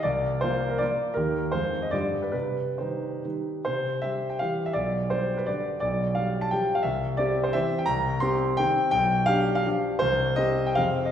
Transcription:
X:1
M:3/4
L:1/16
Q:1/4=166
K:Cm
V:1 name="Grand piano"
d4 c3 B d4 | B4 c3 e d3 =B | =B4 c4 z4 | [K:C] c4 e3 g f3 e |
d4 c3 B d4 | d4 f3 a g3 f | e4 d3 c e3 g | [K:Cm] b4 c'4 g4 |
g4 f3 f z4 | c4 e3 g f3 e |]
V:2 name="Grand piano" clef=bass
C,,4 [F,B,F]4 [F,B,F]4 | [E,,E,B,G]4 [F,,E,A,F]4 [G,,D,G,F]4 | C,4 [E,G,E]4 [E,G,E]4 | [K:C] C,4 [G,G]4 [E,G,G]4 |
B,,,4 [G,G]4 [D,G,G]4 | B,,,4 [G,G]4 [F,G,G]4 | C,,4 [CG]4 [E,CG]4 | [K:Cm] C,,4 [CG]4 [E,CG]4 |
=B,,,4 [DG]4 [F,DG]4 | C,,4 [CG]4 [F,,C,CA]4 |]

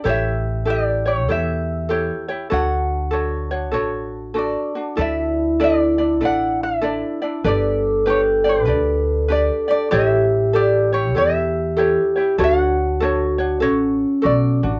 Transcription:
X:1
M:4/4
L:1/8
Q:"Swing" 1/4=97
K:D
V:1 name="Ukulele"
e2 d c e4 | f6 d2 | e2 d2 f e2 z | d2 c B3 d d |
e2 d c e4 | f6 d2 |]
V:2 name="Ukulele"
[EGAc]2 [EGA] [EGc] [EGAc]2 [EGAc] [EGc] | [DFAc]2 [DFAc] [DFc] [DFAc]2 [DFA] [DF] | [DEAd]2 [DEAd] [DEd] [DEAd]2 [DEAd] [DEd] | [DGBd]2 [DGB] [DGd] [DGBd]2 [DGBd] [DGd] |
[EGAc]2 [EGA] [EGc] [EGAc]2 [EGAc] [EGc] | [DFAc]2 [DFAc] [DFc] [FAc]2 [FA] [DF] |]
V:3 name="Vibraphone"
z8 | z8 | E8 | A8 |
G6 G2 | F4 C3 z |]
V:4 name="Upright bass" clef=bass
A,,,4 E,,4 | D,,4 A,,,4 | D,,4 A,,,4 | G,,,4 D,,4 |
A,,,4 E,,4 | D,,4 A,,,2 B,,, A,,, |]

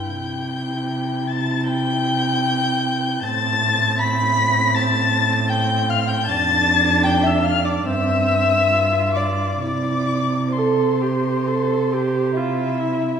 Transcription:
X:1
M:4/4
L:1/16
Q:1/4=75
K:C
V:1 name="Violin"
g'6 a'2 g'8 | a'4 b'4 a'4 g'2 f' g' | a'4 g' e' f' d' e'6 d'2 | d'4 c'8 e4 |]
V:2 name="Violin"
g6 a2 g8 | a4 b4 a4 g2 f g | a4 g e f d e6 d2 | d4 c8 E4 |]
V:3 name="Viola"
E16 | C16 | D8 C4 F4 | E4 A2 G2 A2 G2 F2 E2 |]
V:4 name="Cello" clef=bass
C,16 | A,,16 | F,,8 G,,8 | C,12- C,3 z |]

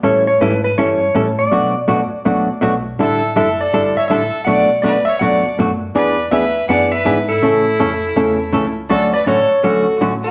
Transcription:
X:1
M:4/4
L:1/16
Q:"Swing" 1/4=163
K:Amix
V:1 name="Electric slide guitar"
c2 c2 B2 B2 c6 d2- | d12 z4 | e4 e2 d4 e2 e4 | f4 d2 e2 f4 z4 |
d4 e4 f2 e4 A2- | A12- A2 z2 | d2 d2 c4 A4 z2 B2 |]
V:2 name="Fiddle"
z16 | z16 | A4 A2 A4 c2 A4 | d4 B2 c2 d4 z4 |
B4 B4 d2 B4 E2- | E12- E2 z2 | A2 B2 A4 F4 z2 G2 |]
V:3 name="Hollow-body jazz guitar"
[E,G,CEA]2 z2 [E,G,CEA] z3 [E,G,CEA]2 z2 [E,G,CEA] z3 | [B,,F,A,DF]2 z2 [B,,F,A,DF] z3 [B,,F,A,DF]2 z2 [B,,F,A,DF] z3 | [D,G,DEA]2 z2 [D,G,DEA] z3 [D,G,DEA]2 z2 [D,G,DEA] z3 | [B,,F,A,DF]2 z2 [B,,F,A,DF] z3 [B,,F,A,DF]2 z2 [B,,F,A,DF] z3 |
[E,B,D^G]2 z2 [E,B,DG] z3 [E,B,DG]2 z2 [E,B,DG] z3 | [C,E,A,CA]2 z2 [C,E,A,CA] z3 [C,E,A,CA]2 z2 [C,E,A,CA] z3 | [D,F,A,CF]2 z2 [D,F,A,CF] z3 [D,F,A,CF]2 z2 [D,F,A,CF] z3 |]
V:4 name="Upright bass" clef=bass
A,,4 ^G,,4 =G,,4 A,,4 | B,,4 F,,2 z2 D,,4 B,,,4 | A,,,4 F,,,4 G,,,2 z2 A,,,2 z2 | B,,,4 C,,4 D,,4 F,,4 |
E,,4 D,,4 F,,4 ^G,,4 | A,,4 =F,,4 E,,4 C,,4 | D,,4 A,,,2 z2 C,,4 A,,,4 |]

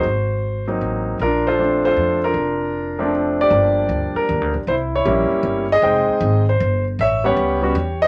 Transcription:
X:1
M:3/4
L:1/8
Q:"Swing" 1/4=156
K:Bb
V:1 name="Grand piano"
[^Fc]3 z3 | [DFB] [FAc]2 [FAc]2 [DFB]- | [DFB]4 z [Gd]- | [K:Cm] [Gd]3 B2 z |
[=Ec] [E_d]4 [A_e]- | [Ae]3 c2 z | [^c=e] [Gc]4 [=c_e] |]
V:2 name="Grand piano"
z3 [_G,B,CE]3 | z2 [F,A,CD]3 z | z3 [F,A,CD]3 | [K:Cm] [F,G,B,D]4- [F,G,B,D] z |
z2 [G,B,_D=E]3 z | [A,CEg]3 z3 | z [G,=B,^C^f]2 [G,B,C^F] z2 |]
V:3 name="Upright bass" clef=bass
_A,,,4 =A,,,2 | B,,,4 F,,2 | F,,,6 | [K:Cm] G,,,2 D,, z (3E,, D,, B,,, |
C,,2 B,,, z G,,,2 | F,,, z A,,,2 G,,,2 | =A,,,2 ^C,,2 =E,,2 |]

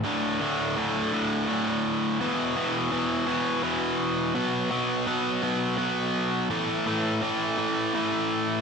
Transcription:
X:1
M:6/8
L:1/8
Q:3/8=56
K:D
V:1 name="Overdriven electric guitar" clef=bass
[D,,A,,D,] [D,,A,,D,] [D,,A,,D,] [D,,A,,D,] [D,,A,,D,]2 | [E,,B,,E,] [E,,B,,E,] [E,,B,,E,] [E,,B,,E,] [E,,B,,E,]2 | [B,,F,B,] [B,,F,B,] [B,,F,B,] [B,,F,B,] [B,,F,B,]2 | [A,,E,A,] [A,,E,A,] [A,,E,A,] [A,,E,A,] [A,,E,A,]2 |]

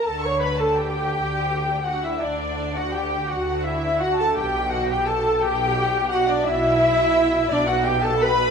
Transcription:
X:1
M:12/8
L:1/16
Q:3/8=57
K:D
V:1 name="Violin section"
a c' b a g6 f e d3 f g2 f2 e2 f a | g2 f g a2 g4 f d e6 d f g a b2 |]
V:2 name="Violin section"
a c' b a g6 f e d3 f g2 f2 e2 f a | g2 f g a2 g4 f d e6 d f g a b2 |]
V:3 name="Viola section"
A c B A G6 F E D3 F G2 F2 E2 F A | G2 F G A2 G4 F D E6 D F G A B2 |]
V:4 name="Cello section" clef=bass
D,6 D,6 D,6 D,6 | B,,6 B,,6 B,,6 B,,6 |]
V:5 name="Double bass section" clef=bass
D,,6 D,,6 D,,6 D,,6 | B,,,6 B,,,6 B,,,6 B,,,6 |]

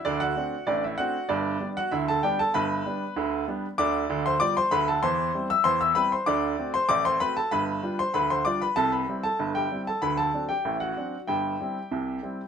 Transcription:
X:1
M:2/4
L:1/16
Q:1/4=96
K:G
V:1 name="Upright piano"
[Dd] [Ff]3 [Dd] [Ee] [Ff]2 | [Dd]3 [Ff] [Ee] [Aa] [Gg] [Aa] | [Bb]6 z2 | [K:C] [dd']3 [cc'] [dd'] [cc'] [Bb] [Aa] |
[cc']3 [ee'] [cc'] [ee'] [Bb] [cc'] | [dd']3 [cc'] [dd'] [cc'] [Bb] [Aa] | [Bb]3 [cc'] [Bb] [cc'] [dd'] [Bb] | [Aa] [Bb]2 [Aa]2 [Gg]2 [Aa] |
[Bb] [Aa]2 [Gg]2 [^F^f]3 | [Gg]8 |]
V:2 name="Upright piano" clef=bass
[D,,D,]2 [A,CD]2 [A,,,A,,]2 [A,CD]2 | [G,,,G,,]2 [G,B,D]2 [D,,D,]2 [G,B,D]2 | [G,,,G,,]2 [G,B,D]2 [D,,D,]2 [G,B,D]2 | [K:C] [D,,D,]2 [D,,D,]2 [G,B,F]2 [D,,D,]2 |
[E,,E,]2 [G,CE]2 [E,,E,]2 [G,CE]2 | [D,,D,]2 [A,C^F]2 [A,,,A,,]2 [A,CF]2 | [G,,,G,,]2 [G,DF]2 [D,,D,]2 [G,DF]2 | [C,,C,]2 [G,CE]2 [G,,,G,,]2 [G,CE]2 |
[D,,D,]2 [^F,CD]2 [A,,,A,,]2 [F,CD]2 | [G,,,G,,]2 [G,CE]2 [C,,C,]2 [G,CE]2 |]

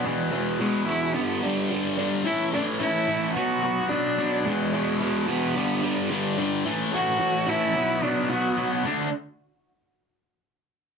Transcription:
X:1
M:4/4
L:1/8
Q:1/4=109
K:D
V:1 name="Cello"
z2 ^G, E B, =G,2 z | E D E2 F2 D2 | ^G,3 B,3 z2 | z F2 E2 D F z |
z8 |]
V:2 name="Overdriven electric guitar" clef=bass
[E,,B,,E,] [E,,B,,E,] [E,,B,,E,] [E,,B,,E,] [G,,D,G,] [G,,D,G,] [G,,D,G,] [G,,D,G,] | [A,,E,A,] [A,,E,A,] [A,,E,A,] [A,,E,A,] [B,,F,B,] [B,,F,B,] [B,,F,B,] [B,,F,B,] | [E,,B,,E,] [E,,B,,E,] [E,,B,,E,] [E,,B,,E,] [G,,D,G,] [G,,D,G,] [G,,D,G,] [G,,D,G,] | [A,,E,A,] [A,,E,A,] [A,,E,A,] [A,,E,A,] [B,,F,B,] [B,,F,B,] [B,,F,B,] [B,,F,B,] |
[D,A,D] z6 z |]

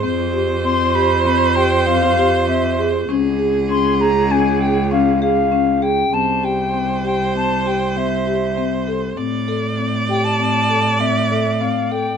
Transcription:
X:1
M:5/4
L:1/16
Q:1/4=98
K:C
V:1 name="Flute"
z4 c'2 b2 b2 g2 f4 e3 z | z4 c'2 _b2 _a2 g2 f2 f4 g2 | a2 g4 g2 a2 g2 e6 z2 | z6 g a a4 e2 e2 f2 g2 |]
V:2 name="Viola"
c16- c4 | _A16- A2 z2 | c16- c4 | d16- d4 |]
V:3 name="Marimba"
C2 G2 C2 G2 C2 G2 C2 G2 C2 _A2 | _D2 _A2 D2 A2 D2 A2 D2 A2 D2 A2 | C2 G2 C2 G2 C2 G2 C2 G2 C2 A2 | C2 A2 C2 G2 C2 A2 C2 A2 C2 A2 |]
V:4 name="Cello" clef=bass
F,,16- F,,4 | _D,,16- D,,4 | C,,16- C,,4 | A,,16- A,,4 |]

